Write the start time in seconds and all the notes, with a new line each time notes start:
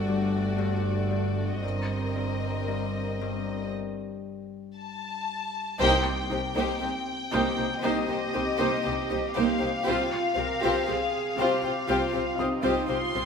Already playing: G1 G2 A3 F#4 D5
0.08 G3
0.58 G2
1.10 G2
1.62 G1 G2 C4 A#4 D#5
2.16 G2
2.68 G2
3.21 G2
4.77 A5
5.79 C2 C3 A#3 D#4 G4 C5 G5
6.30 C2 C3 A#3 D#4 G4 C5
6.55 C2 A#3 D#4 G4 C5
6.81 C2 A#3 C4 D#4 G4 C5
7.31 C2 C3 A#3 D#4 G4 C5 G6
7.57 C2 A#3 D#4 G4 C5
7.82 C2 C3 A#3 D#4 G4 C5 D#5
8.07 C2 A#3 D#4 G4 C5
8.33 C2 A#3 C4 D#4 G4 C5
8.58 C2 A#3 D#4 G4 C5
8.84 C2 C3 A#3 D#4 G4 C5
9.09 C2 A#3 D#4 G4 C5
9.35 C2 A#3 C4 D#4 G4 C5 F5
9.60 C2 A#3 D#4 G4 C5
9.85 C2 C3 C4 F4 G4 C5
10.35 C2 C3 C4 F4 G4 A#4 C5
10.61 C2 C4 F4 G4 C5
10.86 C2 C4 F4 G4 G#4 C5
11.38 C2 C3 C4 F4 G4 C5
11.63 C2 C4 F4 G4 C5
11.88 C2 C3 C4 F4 G4 C5
12.13 C2 C4 F4 G4 C5
12.39 C2 C4 D#4 F4 G4 C5 D#6
12.63 C2 C4 F4 G4 C5
12.89 C2 C3 C4 F4 G4 C5 C6
13.14 C2 C4 F4 G4 C5